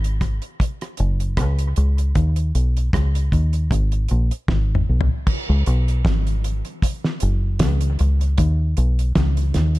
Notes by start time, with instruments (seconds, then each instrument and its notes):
Already playing: fingered electric bass G#1
0.04 closed hi-hat
0.21 kick, cross-stick, closed hi-hat
0.42 closed hi-hat
0.60 kick, closed hi-hat
0.81 cross-stick, closed hi-hat
0.97 fingered electric bass F#1, closed hi-hat
1.20 closed hi-hat
1.37 fingered electric bass C#2, kick, cross-stick, closed hi-hat
1.59 closed hi-hat
1.76 fingered electric bass C#2, closed hi-hat
1.98 closed hi-hat
2.15 fingered electric bass D#2, kick, closed hi-hat
2.36 closed hi-hat
2.55 fingered electric bass B1, closed hi-hat
2.77 closed hi-hat
2.93 fingered electric bass C#2, kick, cross-stick, closed hi-hat
3.15 closed hi-hat
3.32 fingered electric bass D#2, kick, closed hi-hat
3.53 closed hi-hat
3.71 fingered electric bass G#1, kick, closed hi-hat
3.92 closed hi-hat
4.08 fingered electric bass A#1, closed hi-hat
4.31 closed hi-hat
4.48 fingered electric bass G#1, kick, snare
4.75 mid tom
4.89 fingered electric bass B1
5.01 floor tom
5.27 kick, crash
5.49 fingered electric bass C#2
5.66 fingered electric bass B1, closed hi-hat
5.88 closed hi-hat
6.05 fingered electric bass G#1, kick, snare, closed hi-hat
6.27 closed hi-hat
6.44 closed hi-hat
6.65 closed hi-hat
6.82 kick, closed hi-hat
7.04 snare
7.20 fingered electric bass F#1, closed hi-hat
7.59 fingered electric bass C#2, kick, snare, closed hi-hat
7.81 closed hi-hat
7.99 fingered electric bass C#2, closed hi-hat
8.21 closed hi-hat
8.38 fingered electric bass D#2, kick, closed hi-hat
8.77 fingered electric bass B1, closed hi-hat
8.99 closed hi-hat
9.15 fingered electric bass C#2, kick, snare, closed hi-hat
9.37 closed hi-hat
9.54 fingered electric bass D#2, snare, closed hi-hat
9.75 closed hi-hat